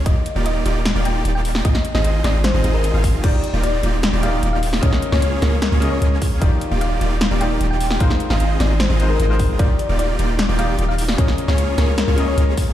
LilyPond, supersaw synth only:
\new Staff \with { instrumentName = "Supersaw synth" } { \time 4/4 \key ees \major \tempo 4 = 151 <bes ees' f' g' d''>16 r8 <bes ees' f' g' d''>8. <bes ees' f' g' d''>16 r8 <bes ees' f' g' d''>8. <bes ees' f' g' d''>4 | <c' ees' f' aes' ees''>16 r8 <c' ees' f' aes' ees''>8. <c' ees' f' aes' ees''>16 r8 <c' ees' f' aes' ees''>16 <c' ees' f' aes' ees''>8. <c' ees' f' aes' f''>8. | <bes ees' f' g' d''>16 r8 <bes ees' f' g' d''>8. <bes ees' f' g' d''>16 r8 <bes ees' f' g' d''>8. <bes ees' f' g' d''>4 | <bes des' f' aes' des''>16 r8 <bes des' f' aes' des''>8. <bes des' f' aes' des''>16 r8 <bes des' f' aes' des''>8. <bes des' f' aes' des''>4 |
<bes ees' f' g' d''>16 r8 <bes ees' f' g' d''>8. <bes ees' f' g' d''>16 r8 <bes ees' f' g' d''>8. <bes ees' f' g' d''>4 | <c' ees' f' aes' ees''>16 r8 <c' ees' f' aes' ees''>8. <c' ees' f' aes' ees''>16 r8 <c' ees' f' aes' ees''>8. <c' ees' f' aes' ees''>4 | <bes ees' f' g' d''>16 r8 <bes ees' f' g' d''>8. <bes ees' f' g' d''>16 r8 <bes ees' f' g' d''>8. <bes ees' f' g' d''>4 | <bes des' f' aes' des''>16 r8 <bes des' f' aes' des''>8. <bes des' f' aes' des''>16 r8 <bes des' f' aes' des''>8. <bes des' f' aes' des''>4 | }